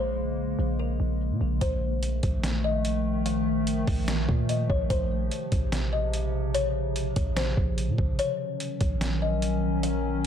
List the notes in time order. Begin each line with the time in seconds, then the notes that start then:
Already playing: A#1 C#3 G#3 A#3 C5
0.59 A#1
0.79 A#4
1.00 A#1
1.31 A#2
1.41 A#1
1.61 A#1 D#3 F3 A3 C5, kick, closed hi-hat
2.03 closed hi-hat
2.23 A#1, kick, closed hi-hat
2.43 snare, closed hi-hat
2.64 D#5
2.85 closed hi-hat
3.26 F5, closed hi-hat
3.67 closed hi-hat
3.87 A#1, kick, open hi-hat
4.08 snare, closed hi-hat
4.29 A#2, kick
4.49 D#5, closed hi-hat
4.70 A#1 C#5, kick
4.90 A#1 C3 C#3 C5, kick, closed hi-hat
5.31 closed hi-hat
5.52 A#1, kick, closed hi-hat
5.72 snare, closed hi-hat
5.93 D#5
6.14 closed hi-hat
6.54 C#5, closed hi-hat
6.96 closed hi-hat
7.16 A#1, kick, closed hi-hat
7.36 C5, snare, closed hi-hat
7.57 A#1, kick
7.78 closed hi-hat
7.88 A#2
7.98 A#1, kick
8.19 D#3 F#3 C#4 C#5, closed hi-hat
8.60 closed hi-hat
8.81 A#1, kick, closed hi-hat
9.01 snare, closed hi-hat
9.22 D#5
9.42 closed hi-hat
9.83 F5, closed hi-hat